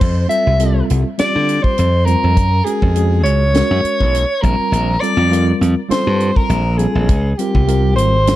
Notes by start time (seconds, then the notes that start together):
Already playing: C5
0.01 F2, kick, crash
0.28 G3 C4 F4 A4 E5, closed hi-hat
0.47 C2
0.59 G3 C4 F4 A4, closed hi-hat
0.90 C2, closed hi-hat
1.18 G3 C4 F4 G4 D5, muted slap bass stroke, snare, closed hi-hat
1.36 D3
1.49 closed hi-hat
1.63 C5, kick
1.78 F2, closed hi-hat
2.05 G3 C4 F4 A#4 C5, closed hi-hat
2.24 F2
2.37 F#2, kick, closed hi-hat
2.65 G#3 C#4 F#4 G#4 A#4, closed hi-hat
2.82 F2, kick
2.95 G#3 C#4 F#4 G#4, closed hi-hat
3.23 C#2 C#5, closed hi-hat
3.54 G#3 C#4 F#4 A#4, snare, closed hi-hat
3.71 F#2
3.84 muted slap bass stroke, closed hi-hat
4.00 B1, kick
4.15 closed hi-hat
4.41 A#1 G3 C4 F4 A#4, kick, closed hi-hat
4.72 A#1, closed hi-hat
5.00 G3 C4 F4 A4 D5, closed hi-hat
5.17 F2
5.31 G3 C4 F4 A#4, closed hi-hat
5.61 F2, closed hi-hat
5.88 G3 C4 F4 A4 C5, muted slap bass stroke, snare, closed hi-hat
6.07 G2
6.20 closed hi-hat
6.36 A#4, kick
6.49 A#1, closed hi-hat
6.78 G3 C4 F4 G#4 A4, closed hi-hat
6.95 A#1
7.09 C#2, kick, closed hi-hat
7.33 G#4
7.38 G3 C4 F4 G4 A#4, closed hi-hat
7.55 C2, kick
7.67 G3 C4 F4 A#4, closed hi-hat
7.96 G#1 C5, closed hi-hat
8.27 G3 C4 F4 A#4, snare, closed hi-hat